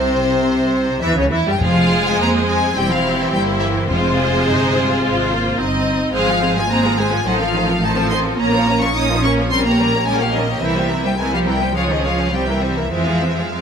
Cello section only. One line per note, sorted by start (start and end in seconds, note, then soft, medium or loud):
0.00 0.99 C3 medium
1.02 1.16 E3 medium
1.16 1.31 C#3 medium
1.31 1.45 E3 medium
1.45 1.60 G3 medium
1.60 2.03 F3 medium
2.04 2.18 G#3 medium
2.18 2.47 A#3 medium
2.47 2.75 G#3 medium
2.76 2.90 G3 medium
2.90 3.18 F3 medium
3.18 3.33 E3 medium
3.32 3.61 G3 medium
3.61 3.89 E3 medium
3.89 5.57 C3 medium
6.14 6.53 F3 medium
6.56 6.70 G#3 medium
6.70 6.98 A#3 medium
6.97 7.05 G#3 medium
7.26 7.31 F#3 medium
7.39 7.81 F3 medium
7.81 8.09 A3 medium
8.09 8.38 C4 medium
8.38 8.80 A#3 medium
8.80 8.95 C#4 medium
8.94 9.22 D#4 medium
9.23 9.50 C#4 medium
9.51 9.64 C4 medium
9.64 10.05 A#3 medium
10.05 10.19 G#3 medium
10.19 10.33 F3 medium
10.33 10.41 D#3 medium
10.61 11.03 E3 medium
11.04 11.09 G3 medium
11.18 11.32 G#3 medium
11.32 11.46 F3 medium
11.46 11.75 G3 medium
11.74 11.89 F3 medium
11.88 11.94 D#3 medium
12.03 12.32 F3 medium
12.32 12.62 G3 medium
12.61 12.90 E3 medium
12.91 13.51 E3 medium
13.53 13.61 F3 soft